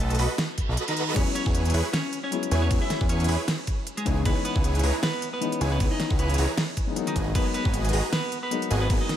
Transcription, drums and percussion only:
0.10 closed hi-hat
0.15 closed hi-hat
0.19 open hi-hat
0.38 snare, closed hi-hat
0.58 kick, closed hi-hat
0.77 closed hi-hat
0.88 closed hi-hat
0.97 closed hi-hat
1.16 kick, closed hi-hat, crash
1.35 closed hi-hat
1.46 kick
1.55 closed hi-hat
1.65 closed hi-hat
1.70 closed hi-hat
1.74 open hi-hat
1.93 snare, closed hi-hat, crash
2.13 closed hi-hat
2.32 closed hi-hat
2.43 closed hi-hat
2.51 closed hi-hat
2.71 kick, closed hi-hat, crash
2.90 snare, closed hi-hat
3.01 kick
3.09 closed hi-hat
3.20 closed hi-hat
3.24 closed hi-hat
3.29 open hi-hat
3.48 snare, closed hi-hat, crash
3.67 kick, closed hi-hat
3.87 closed hi-hat
3.97 closed hi-hat
4.06 kick, closed hi-hat
4.25 kick, closed hi-hat, crash
4.45 closed hi-hat
4.56 kick
4.64 closed hi-hat
4.75 closed hi-hat
4.79 closed hi-hat
4.83 open hi-hat
5.03 snare, closed hi-hat, crash
5.22 closed hi-hat
5.42 closed hi-hat
5.52 closed hi-hat
5.61 closed hi-hat
5.80 kick, closed hi-hat, crash
6.00 snare, closed hi-hat
6.11 kick
6.19 closed hi-hat
6.29 closed hi-hat
6.34 closed hi-hat
6.38 open hi-hat
6.58 snare, closed hi-hat, crash
6.77 kick, closed hi-hat
6.96 closed hi-hat
7.07 closed hi-hat
7.16 kick, closed hi-hat
7.35 kick, closed hi-hat, crash
7.54 closed hi-hat
7.65 kick
7.74 closed hi-hat
7.85 closed hi-hat
7.89 closed hi-hat
7.93 open hi-hat
8.13 snare, closed hi-hat, crash
8.32 closed hi-hat
8.51 closed hi-hat
8.62 closed hi-hat
8.71 closed hi-hat
8.90 kick, closed hi-hat, crash
9.09 snare, closed hi-hat

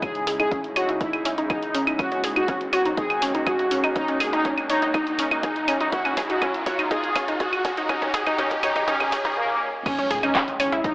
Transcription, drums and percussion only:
0.02 kick, closed hi-hat, claves
0.15 closed hi-hat
0.27 open hi-hat, mid tom
0.40 closed hi-hat, claves
0.51 kick, closed hi-hat
0.64 closed hi-hat
0.76 open hi-hat, claves
0.89 closed hi-hat
1.01 kick, closed hi-hat
1.13 closed hi-hat, claves
1.25 open hi-hat
1.38 closed hi-hat
1.50 kick, closed hi-hat, claves
1.63 closed hi-hat
1.75 open hi-hat, mid tom
1.87 closed hi-hat, claves
1.99 kick, closed hi-hat, claves
2.12 closed hi-hat
2.24 open hi-hat, mid tom
2.36 closed hi-hat, claves
2.48 kick, closed hi-hat
2.61 closed hi-hat
2.73 open hi-hat, claves
2.85 closed hi-hat
2.97 kick, closed hi-hat
3.10 closed hi-hat, claves
3.22 open hi-hat
3.35 closed hi-hat
3.47 kick, closed hi-hat, claves
3.59 closed hi-hat, mid tom
3.71 open hi-hat
3.84 closed hi-hat, claves
3.96 kick, closed hi-hat
4.08 closed hi-hat
4.20 open hi-hat, mid tom, claves
4.33 closed hi-hat
4.45 kick, closed hi-hat
4.58 closed hi-hat, claves
4.70 open hi-hat
4.82 closed hi-hat
4.94 kick, closed hi-hat, claves
5.07 closed hi-hat
5.19 open hi-hat
5.31 closed hi-hat, claves
5.43 kick, closed hi-hat
5.56 closed hi-hat
5.68 open hi-hat, mid tom, claves
5.80 closed hi-hat
5.92 kick, closed hi-hat
6.05 closed hi-hat, claves
6.17 kick, open hi-hat, mid tom
6.30 closed hi-hat
6.42 kick, closed hi-hat, claves
6.54 closed hi-hat
6.66 kick, open hi-hat
6.79 closed hi-hat, claves
6.91 kick, closed hi-hat
7.04 closed hi-hat
7.15 kick, open hi-hat, claves
7.28 closed hi-hat
7.40 kick, closed hi-hat
7.53 closed hi-hat, mid tom, claves
7.65 kick, open hi-hat
7.77 closed hi-hat
7.89 kick, closed hi-hat, claves
8.02 kick, closed hi-hat
8.14 kick, open hi-hat, mid tom
8.26 kick, closed hi-hat, claves
8.38 kick, closed hi-hat
8.51 kick, closed hi-hat
8.63 kick, open hi-hat, claves
8.76 kick, closed hi-hat
8.88 kick, closed hi-hat
9.00 kick, closed hi-hat, claves
9.12 kick, open hi-hat
9.25 kick, closed hi-hat
9.86 kick, closed hi-hat, crash, claves
9.99 closed hi-hat
10.11 open hi-hat, mid tom
10.23 closed hi-hat, claves
10.35 kick, clap, closed hi-hat
10.48 closed hi-hat
10.60 open hi-hat, claves
10.72 closed hi-hat
10.84 kick, closed hi-hat

